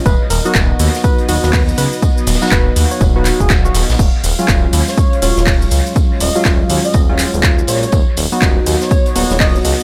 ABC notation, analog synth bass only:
X:1
M:4/4
L:1/16
Q:"Swing 16ths" 1/4=122
K:Cblyd
V:1 name="Analog synth bass" clef=bass
^D,,, z D,,, z D,,, z ^D,, z3 D,,, D,,,2 z _D,, z | z2 ^D,,, z D,,, z ^D,, z D,,,2 z D,,,2 z D,,, B,,, | E,,, z E,,, z E,,, z E,, z3 E,,, E,,,2 z D,, z | z2 E,,, z E,,, z E,, z E,,,2 z E,,,2 z B,,, z |
^D,,, z D,,, z D,,, z ^D,, z3 D,,, D,,,2 z _D,, z |]